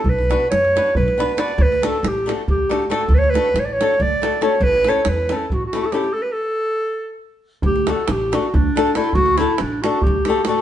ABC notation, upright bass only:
X:1
M:7/8
L:1/8
Q:1/4=139
K:D
V:1 name="Upright bass" clef=bass
B,,,2 F,,2 B,,, z2 | D,,2 A,,,2 D,, z2 | D,,2 A,,,2 D,, z2 | A,,,2 E,,2 A,,, z2 |
z6 z | D,,2 A,,,2 D,, z2 | D,,2 A,,,2 D,, z2 |]